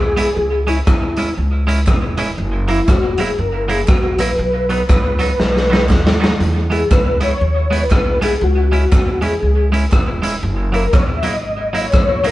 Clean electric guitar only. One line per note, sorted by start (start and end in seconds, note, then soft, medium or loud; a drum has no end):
0.17 0.28 G#3 medium
0.17 0.28 B3 medium
0.17 0.29 E4 medium
0.67 0.78 G#3 medium
0.67 0.79 C#4 medium
0.67 0.79 E4 medium
1.17 1.29 G#3 medium
1.17 1.29 C#4 medium
1.17 1.29 E4 medium
1.67 1.79 G#3 medium
1.67 1.79 C#4 loud
1.67 1.79 E4 loud
2.18 2.29 G#3 medium
2.18 2.29 C#4 medium
2.18 2.30 E4 medium
2.68 2.79 F#3 medium
2.68 2.80 A#3 medium
2.68 2.80 E4 loud
3.18 3.30 F#3 medium
3.18 3.30 A#3 medium
3.18 3.31 E4 loud
3.68 3.80 F#3 medium
3.68 3.80 A#3 medium
3.68 3.81 E4 loud
4.19 4.30 F#3 medium
4.19 4.31 A#3 medium
4.19 4.31 E4 medium
4.69 4.81 F#3 medium
4.69 4.81 B3 medium
4.69 4.82 D#4 medium
5.19 5.31 F#3 medium
5.19 5.31 B3 medium
5.19 5.32 D#4 medium
5.39 muted clean electric guitar stroke soft
5.70 5.81 F#3 medium
5.70 5.82 B3 medium
5.70 5.82 D#4 medium
6.20 6.31 F#3 medium
6.20 6.32 B3 medium
6.20 6.32 D#4 medium
6.70 6.82 G#3 medium
6.70 6.82 B3 medium
6.70 6.83 E4 medium
7.21 7.32 G#3 medium
7.21 7.33 B3 medium
7.21 7.33 E4 medium
7.71 7.82 G#3 loud
7.71 7.83 B3 medium
7.71 7.83 E4 medium
8.22 8.33 G#3 medium
8.22 8.33 B3 medium
8.22 8.34 E4 medium
8.72 8.83 G#3 medium
8.72 8.83 C#4 medium
8.72 8.84 E4 medium
9.22 9.33 G#3 medium
9.22 9.34 C#4 medium
9.22 9.34 E4 medium
9.72 9.84 G#3 medium
9.72 9.84 C#4 medium
9.72 9.85 E4 loud
10.22 10.34 G#3 medium
10.22 10.34 C#4 medium
10.22 10.35 E4 medium
10.72 10.84 F#3 medium
10.72 10.85 A#3 medium
10.72 10.85 E4 loud
11.23 11.34 F#3 medium
11.23 11.35 A#3 medium
11.23 11.35 E4 medium
11.73 11.85 F#3 medium
11.73 11.85 A#3 medium
11.73 11.86 E4 loud
12.24 12.31 F#3 medium
12.24 12.31 A#3 medium
12.24 12.31 E4 medium